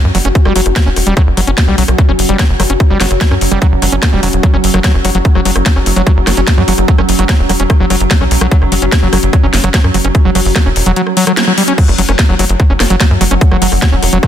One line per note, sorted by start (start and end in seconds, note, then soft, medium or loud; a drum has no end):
0.00 11.77 F#3 medium
0.00 11.77 C#4 medium
0.00 11.78 F#4 medium
0.00 11.78 F#5 medium
0.05 0.11 F#2 medium
0.15 0.21 F#1 loud
0.15 0.18 F#3 medium
0.15 open hi-hat loud
0.25 0.31 F#1 medium
0.25 0.28 C#4 medium
0.25 cross-stick soft
0.25 closed hi-hat medium
0.35 kick loud
0.35 closed hi-hat medium
0.45 0.52 F#1 medium
0.45 0.53 G3 medium
0.45 cross-stick medium
0.56 0.62 F#1 loud
0.56 0.61 F#3 medium
0.56 open hi-hat loud
0.66 0.72 F#1 medium
0.66 cross-stick soft
0.66 closed hi-hat medium
0.76 0.79 F#3 medium
0.76 kick loud
0.76 snare loud
0.76 closed hi-hat medium
0.86 0.93 E1 medium
0.86 0.89 C#4 medium
0.96 1.03 E1 loud
0.96 cross-stick soft
0.96 open hi-hat loud
1.07 1.13 E1 medium
1.07 1.14 G3 medium
1.07 closed hi-hat medium
1.17 1.22 F#3 medium
1.17 kick loud
1.17 cross-stick medium
1.17 closed hi-hat medium
1.27 1.33 F#1 medium
1.37 1.44 F#1 loud
1.37 1.40 F#3 medium
1.37 cross-stick soft
1.37 open hi-hat loud
1.47 1.54 F#1 loud
1.47 1.50 C#4 medium
1.47 closed hi-hat medium
1.58 kick loud
1.58 snare loud
1.58 closed hi-hat medium
1.68 1.74 B1 medium
1.68 1.75 G3 medium
1.68 cross-stick soft
1.78 1.85 B1 loud
1.78 1.83 F#3 medium
1.78 open hi-hat loud
1.88 1.95 B1 loud
1.88 cross-stick medium
1.88 closed hi-hat medium
1.98 2.02 F#3 medium
1.98 kick loud
1.98 closed hi-hat medium
2.09 2.15 F#1 medium
2.09 2.12 C#4 medium
2.09 cross-stick soft
2.19 2.25 F#1 loud
2.19 open hi-hat loud
2.29 2.36 F#1 medium
2.29 2.37 G3 medium
2.29 closed hi-hat medium
2.39 2.44 F#3 medium
2.39 kick loud
2.39 cross-stick soft
2.39 snare loud
2.39 closed hi-hat medium
2.49 2.56 F#1 medium
2.60 2.66 F#1 loud
2.60 2.63 F#3 medium
2.60 cross-stick medium
2.60 open hi-hat loud
2.70 2.76 F#1 medium
2.70 2.73 C#4 medium
2.70 closed hi-hat medium
2.80 kick loud
2.80 cross-stick soft
2.80 closed hi-hat medium
2.90 2.97 F#1 medium
2.90 2.98 G3 medium
3.00 3.07 F#1 loud
3.00 3.06 F#3 medium
3.00 snare medium
3.00 open hi-hat loud
3.11 3.17 F#1 medium
3.11 cross-stick soft
3.11 closed hi-hat medium
3.21 3.24 F#3 medium
3.21 kick loud
3.21 snare loud
3.21 closed hi-hat medium
3.31 3.38 F#2 medium
3.31 3.34 C#4 medium
3.31 cross-stick medium
3.41 3.48 F#1 loud
3.41 open hi-hat loud
3.52 3.58 F#1 loud
3.52 3.59 G3 medium
3.52 cross-stick soft
3.52 closed hi-hat medium
3.62 3.67 F#3 medium
3.62 kick loud
3.62 closed hi-hat medium
3.72 3.78 F#1 medium
3.82 3.89 F#1 loud
3.82 3.85 F#3 medium
3.82 cross-stick soft
3.82 open hi-hat loud
3.92 3.99 F#1 medium
3.92 3.95 C#4 medium
3.92 closed hi-hat medium
4.03 kick loud
4.03 cross-stick medium
4.03 snare loud
4.03 closed hi-hat medium
4.13 4.19 E1 medium
4.13 4.20 G3 medium
4.23 4.29 E1 loud
4.23 4.28 F#3 medium
4.23 open hi-hat loud
4.33 4.40 E1 medium
4.33 closed hi-hat medium
4.43 4.46 F#3 medium
4.43 kick loud
4.43 closed hi-hat medium
4.54 4.60 F#1 medium
4.54 4.57 C#4 medium
4.54 cross-stick soft
4.64 4.70 F#1 loud
4.64 open hi-hat loud
4.74 4.80 F#1 medium
4.74 4.79 F#3 loud
4.74 cross-stick medium
4.74 closed hi-hat medium
4.84 4.92 F#3 medium
4.84 kick loud
4.84 snare loud
4.84 closed hi-hat medium
4.94 5.01 F#1 medium
4.94 cross-stick soft
5.05 5.11 F#1 loud
5.05 5.10 F#3 loud
5.05 open hi-hat loud
5.15 5.21 F#1 medium
5.15 5.18 F#3 loud
5.15 closed hi-hat medium
5.25 kick loud
5.25 closed hi-hat medium
5.35 5.42 F#1 medium
5.35 5.40 F#3 loud
5.35 cross-stick soft
5.45 5.52 F#1 loud
5.45 5.51 F#3 medium
5.45 open hi-hat loud
5.56 5.62 F#1 medium
5.56 cross-stick medium
5.56 closed hi-hat medium
5.66 5.69 F#3 medium
5.66 kick loud
5.66 snare loud
5.66 closed hi-hat medium
5.76 5.82 F#1 medium
5.76 5.79 C#4 medium
5.76 cross-stick soft
5.86 5.93 F#1 loud
5.86 open hi-hat loud
5.96 6.03 F#1 medium
5.96 6.02 F#3 loud
5.96 closed hi-hat medium
6.07 6.12 F#3 medium
6.07 kick loud
6.07 cross-stick soft
6.07 closed hi-hat medium
6.17 6.23 F#1 medium
6.27 6.33 F#1 loud
6.27 6.30 F#3 medium
6.27 cross-stick medium
6.27 snare medium
6.27 open hi-hat loud
6.37 6.44 F#1 medium
6.37 6.40 C#4 medium
6.37 closed hi-hat medium
6.47 kick loud
6.47 cross-stick soft
6.47 snare loud
6.47 closed hi-hat medium
6.58 6.64 F#2 medium
6.58 6.63 F#3 loud
6.68 6.74 F#1 loud
6.68 6.73 F#3 medium
6.68 open hi-hat loud
6.78 6.84 F#1 medium
6.78 cross-stick soft
6.78 closed hi-hat medium
6.88 6.91 F#3 medium
6.88 kick loud
6.88 closed hi-hat medium
6.98 7.05 F#1 medium
6.98 7.02 C#4 medium
6.98 cross-stick medium
7.09 7.15 F#1 loud
7.09 open hi-hat loud
7.19 7.25 F#1 medium
7.19 7.24 F#3 loud
7.19 cross-stick soft
7.19 closed hi-hat medium
7.29 7.34 F#3 medium
7.29 kick loud
7.29 snare loud
7.29 closed hi-hat medium
7.39 7.46 E1 medium
7.49 7.56 E1 loud
7.49 7.53 F#3 medium
7.49 cross-stick soft
7.49 open hi-hat loud
7.60 7.66 E1 medium
7.60 7.63 C#4 medium
7.60 closed hi-hat medium
7.70 kick loud
7.70 cross-stick medium
7.70 closed hi-hat medium
7.80 7.87 F#1 medium
7.80 7.85 F#3 loud
7.90 7.97 F#1 loud
7.90 7.95 F#3 medium
7.90 cross-stick soft
7.90 open hi-hat loud
8.00 8.07 F#1 medium
8.00 closed hi-hat medium
8.11 8.14 F#3 medium
8.11 kick loud
8.11 snare loud
8.11 closed hi-hat medium
8.21 8.27 B1 medium
8.21 8.24 C#4 medium
8.21 cross-stick soft
8.31 8.38 B1 loud
8.31 open hi-hat loud
8.41 8.48 B1 medium
8.41 8.46 F#3 loud
8.41 cross-stick medium
8.41 closed hi-hat medium
8.51 8.57 F#3 medium
8.51 kick loud
8.51 closed hi-hat medium
8.62 8.68 F#1 medium
8.62 cross-stick soft
8.72 8.78 F#1 loud
8.72 8.75 F#3 medium
8.72 open hi-hat loud
8.82 8.89 F#1 medium
8.82 8.85 C#4 medium
8.82 closed hi-hat medium
8.92 kick loud
8.92 cross-stick soft
8.92 snare loud
8.92 closed hi-hat medium
9.03 9.09 F#1 medium
9.03 9.08 F#3 loud
9.13 9.19 F#1 loud
9.13 9.18 F#3 medium
9.13 cross-stick medium
9.13 open hi-hat loud
9.23 9.29 F#1 medium
9.23 closed hi-hat medium
9.33 9.36 F#3 medium
9.33 kick loud
9.33 cross-stick soft
9.33 closed hi-hat medium
9.43 9.50 F#1 medium
9.43 9.46 C#4 medium
9.54 9.60 F#1 loud
9.54 snare medium
9.54 open hi-hat loud
9.64 9.70 F#1 medium
9.64 9.69 F#3 loud
9.64 cross-stick soft
9.64 closed hi-hat medium
9.74 9.79 F#3 medium
9.74 kick loud
9.74 snare loud
9.74 closed hi-hat medium
9.84 9.91 F#2 medium
9.84 cross-stick medium
9.94 10.01 F#1 loud
9.94 9.97 F#3 medium
9.94 open hi-hat loud
10.05 10.11 F#1 medium
10.05 10.08 C#4 medium
10.05 cross-stick soft
10.05 closed hi-hat medium
10.15 kick loud
10.15 closed hi-hat medium
10.25 10.31 F#1 medium
10.25 10.30 F#3 loud
10.35 10.42 F#1 loud
10.35 10.40 F#3 medium
10.35 cross-stick soft
10.35 open hi-hat loud
10.45 10.52 F#1 loud
10.45 open hi-hat medium
10.56 10.59 F#3 medium
10.56 kick loud
10.56 cross-stick medium
10.56 snare loud
10.66 10.72 E1 medium
10.66 10.69 C#4 medium
10.76 10.82 E1 loud
10.76 open hi-hat loud
10.86 10.93 E1 medium
10.86 10.91 F#3 loud
10.86 closed hi-hat medium
10.96 11.02 F#3 medium
10.96 closed hi-hat medium
11.07 cross-stick soft
11.17 11.25 F#3 loud
11.17 open hi-hat loud
11.27 11.32 F#3 medium
11.27 cross-stick medium
11.27 closed hi-hat medium
11.37 snare loud
11.37 closed hi-hat medium
11.47 11.53 F#3 medium
11.47 cross-stick soft
11.58 11.63 G3 medium
11.58 open hi-hat loud
11.68 11.73 C#4 medium
11.68 closed hi-hat medium
11.78 14.27 F#3 medium
11.78 11.83 F#3 medium
11.78 14.27 C#4 medium
11.78 kick loud
11.78 closed hi-hat medium
11.78 crash loud
11.88 11.95 F#1 medium
11.88 cross-stick soft
11.97 12.05 F#1 loud
11.97 12.02 F#3 medium
11.97 14.27 F#4 medium
11.97 open hi-hat loud
12.09 12.15 F#1 medium
12.09 12.12 C#4 medium
12.09 cross-stick medium
12.09 closed hi-hat medium
12.19 kick loud
12.19 snare loud
12.19 closed hi-hat medium
12.29 12.36 F#1 medium
12.29 12.34 F#3 loud
12.29 14.27 F#5 medium
12.29 cross-stick soft
12.39 12.46 F#1 loud
12.39 12.44 F#3 medium
12.39 open hi-hat loud
12.49 12.56 F#1 medium
12.49 closed hi-hat medium
12.60 12.63 F#3 medium
12.60 kick loud
12.60 cross-stick soft
12.60 closed hi-hat medium
12.70 12.76 F#1 medium
12.70 12.73 C#4 medium
12.80 12.87 F#1 loud
12.80 cross-stick medium
12.80 snare medium
12.80 open hi-hat loud
12.90 12.97 F#1 loud
12.90 12.95 F#3 loud
12.90 closed hi-hat medium
13.00 13.06 F#3 medium
13.00 kick loud
13.00 cross-stick soft
13.00 snare loud
13.00 closed hi-hat medium
13.11 13.17 F#2 medium
13.21 13.27 F#1 loud
13.21 13.24 F#3 medium
13.21 open hi-hat loud
13.31 13.38 F#1 medium
13.31 13.34 C#4 medium
13.31 cross-stick soft
13.31 closed hi-hat medium
13.41 kick loud
13.41 closed hi-hat medium
13.51 13.58 F#1 medium
13.51 13.57 F#3 loud
13.51 cross-stick medium
13.62 13.68 F#1 loud
13.62 13.67 F#3 medium
13.62 open hi-hat loud
13.72 13.78 F#1 medium
13.72 cross-stick soft
13.72 open hi-hat medium
13.82 13.85 F#3 medium
13.82 kick loud
13.82 snare loud
13.92 13.99 E1 medium
13.92 13.95 C#4 medium
14.03 14.09 E1 loud
14.03 cross-stick soft
14.03 open hi-hat loud
14.13 14.19 E1 medium
14.13 14.18 F#3 loud
14.13 closed hi-hat medium
14.23 14.27 F#3 medium
14.23 kick loud
14.23 cross-stick medium
14.23 closed hi-hat medium